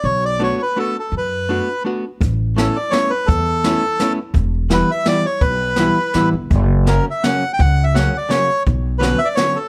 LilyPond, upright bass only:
\new Staff \with { instrumentName = "Upright bass" } { \clef bass \time 3/4 \key b \minor \tempo 4 = 168 b,,2 r4 | fis,2 r4 | a,,2 r4 | e,2 r4 |
e,,2 r4 | b,,2 a,,8 g,,8 | fis,,2 r4 | cis,2 r4 |
b,,2 r4 | }